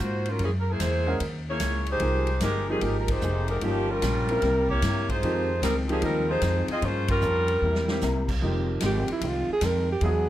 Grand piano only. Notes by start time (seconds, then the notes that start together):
1.06 G#3 C#4 F#4 A#4
2.02 F3 A#3 D#4 G4
2.69 F3 A#3 D#4 G4
3.62 F3 A#3 D#4 G4
4.29 A#3 C4 E4 A#4
5.24 F3 A#3 D#4 G4
5.88 F3 A#3 D#4 G4
7.90 A#3 C4 E4 G4
8.42 F3 A#3 D#4 G4
10.03 F#3 B3 E4 G#4